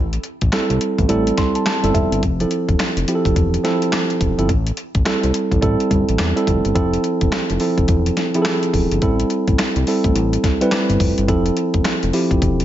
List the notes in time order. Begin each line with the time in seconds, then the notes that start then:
Already playing: A1
0.13 closed hi-hat
0.23 closed hi-hat
0.41 A1, kick, closed hi-hat
0.52 G3 C4 E4 A4, snare, clap, closed hi-hat
0.70 C2, closed hi-hat
0.81 closed hi-hat
0.98 A1, kick, closed hi-hat
1.08 A1 G3 C4 E4 A4, closed hi-hat
1.27 closed hi-hat
1.38 C6, kick, snare, closed hi-hat
1.55 A5, closed hi-hat
1.66 A5, snare, clap, closed hi-hat
1.83 G1 G3 B3 E4 A4, closed hi-hat
1.90 C4
1.94 F1 E5, kick, closed hi-hat
2.12 G1, closed hi-hat
2.23 F1, kick, closed hi-hat
2.40 F3 C4 E4 A4, closed hi-hat
2.51 closed hi-hat
2.69 E1, kick, closed hi-hat
2.80 snare, clap, closed hi-hat
2.97 F1, closed hi-hat
3.08 F3 C4 E4 G4, closed hi-hat
3.15 A4
3.25 F1, kick, closed hi-hat
3.36 E1, kick, closed hi-hat
3.54 closed hi-hat
3.64 F3 C4 E4 A4, snare, closed hi-hat
3.82 closed hi-hat
3.93 snare, clap, closed hi-hat
4.10 closed hi-hat
4.21 E1, kick, closed hi-hat
4.38 G1 F3 C4 E4 A4, closed hi-hat
4.49 A1, kick, closed hi-hat
4.67 closed hi-hat
4.77 closed hi-hat
4.95 A1, kick, closed hi-hat
5.05 G3 C4 E4 A4, snare, clap, closed hi-hat
5.23 C2, closed hi-hat
5.34 closed hi-hat
5.51 A1, kick, closed hi-hat
5.61 A1 G3 C4 E4 A4, kick, closed hi-hat
5.80 closed hi-hat
5.91 G1, kick, closed hi-hat
6.09 A1, closed hi-hat
6.19 E2, snare, clap, closed hi-hat
6.36 G3 C4 E4 A4, closed hi-hat
6.47 F1, kick, closed hi-hat
6.65 G1, closed hi-hat
6.74 F1 F3 C4 E4 A4, kick, closed hi-hat
6.94 closed hi-hat
7.04 closed hi-hat
7.21 E1, kick, closed hi-hat
7.32 snare, clap, closed hi-hat
7.50 F1, closed hi-hat
7.60 F3 C4 E4 A4, open hi-hat
7.78 F1, kick, closed hi-hat
7.88 E1, kick, closed hi-hat
8.06 closed hi-hat
8.17 snare, closed hi-hat
8.34 F3 C4 E4 G#4, closed hi-hat
8.42 A4, snare, clap, closed hi-hat
8.63 closed hi-hat
8.73 E1, kick, open hi-hat
8.91 G1, closed hi-hat
9.02 A1 G3 C4 E4 A4, kick, closed hi-hat
9.20 closed hi-hat
9.30 closed hi-hat
9.48 A1, kick, closed hi-hat
9.59 snare, clap, closed hi-hat
9.76 C2, closed hi-hat
9.87 G3 C4 E4 A4, open hi-hat
10.04 A1, kick, closed hi-hat
10.15 A1, closed hi-hat
10.33 closed hi-hat
10.44 kick, snare, closed hi-hat
10.61 G3 C4 E4 B4, closed hi-hat
10.72 snare, clap, closed hi-hat
10.89 G1, closed hi-hat
11.00 F1, kick, open hi-hat
11.18 G1, closed hi-hat
11.28 F1 F3 C4 E4 A4, kick, closed hi-hat
11.46 closed hi-hat
11.57 closed hi-hat
11.74 E1, kick, closed hi-hat
11.85 snare, clap, closed hi-hat
12.03 F1, closed hi-hat
12.13 F3 C4 E4 G4, open hi-hat
12.31 F1, kick, closed hi-hat
12.42 E1, kick, closed hi-hat
12.60 closed hi-hat